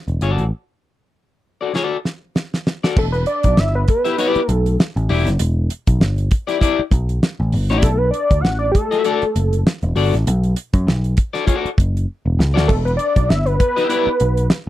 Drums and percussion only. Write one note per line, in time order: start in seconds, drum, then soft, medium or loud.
0.08 closed hi-hat soft
0.21 closed hi-hat medium
0.38 closed hi-hat soft
1.76 snare medium
2.05 snare medium
2.36 snare medium
2.54 snare medium
2.67 snare medium
2.84 snare medium
2.97 kick loud
2.97 crash loud
3.14 closed hi-hat soft
3.26 closed hi-hat medium
3.43 kick medium
3.43 closed hi-hat medium
3.57 snare loud
3.88 kick medium
3.88 closed hi-hat medium
4.05 snare soft
4.05 closed hi-hat medium
4.18 closed hi-hat loud
4.35 closed hi-hat soft
4.49 closed hi-hat medium
4.66 closed hi-hat soft
4.80 snare loud
4.97 closed hi-hat soft
5.09 open hi-hat medium
5.27 snare soft
5.27 closed hi-hat soft
5.39 closed hi-hat loud
5.70 closed hi-hat medium
5.87 kick medium
5.87 closed hi-hat medium
6.01 snare loud
6.18 closed hi-hat soft
6.31 kick loud
6.31 closed hi-hat medium
6.48 snare soft
6.48 closed hi-hat soft
6.61 kick medium
6.61 closed hi-hat medium
6.91 kick medium
6.91 closed hi-hat medium
7.09 closed hi-hat soft
7.23 snare loud
7.52 open hi-hat medium
7.69 snare soft
7.69 closed hi-hat soft
7.82 kick loud
7.82 closed hi-hat loud
8.14 closed hi-hat medium
8.31 kick medium
8.31 closed hi-hat medium
8.45 snare loud
8.75 kick loud
8.75 closed hi-hat medium
8.92 snare soft
8.92 closed hi-hat soft
9.05 closed hi-hat medium
9.22 closed hi-hat soft
9.36 closed hi-hat medium
9.53 closed hi-hat soft
9.67 snare loud
9.82 closed hi-hat soft
9.96 open hi-hat medium
10.14 snare soft
10.14 closed hi-hat soft
10.27 closed hi-hat loud
10.44 closed hi-hat soft
10.56 closed hi-hat medium
10.73 kick medium
10.73 closed hi-hat medium
10.88 snare loud
11.04 closed hi-hat soft
11.17 kick loud
11.17 closed hi-hat medium
11.35 snare soft
11.35 closed hi-hat soft
11.47 kick medium
11.47 closed hi-hat medium
11.66 closed hi-hat soft
11.78 kick medium
11.78 closed hi-hat medium
11.97 closed hi-hat soft
12.40 snare medium
12.57 snare loud
12.69 kick loud
12.69 crash medium
12.87 closed hi-hat soft
12.99 closed hi-hat medium
13.16 kick medium
13.16 closed hi-hat medium
13.30 snare loud
13.46 closed hi-hat soft
13.60 kick loud
13.60 closed hi-hat medium
13.78 snare soft
13.78 closed hi-hat soft
13.90 closed hi-hat medium
14.20 closed hi-hat medium
14.37 closed hi-hat soft
14.50 snare loud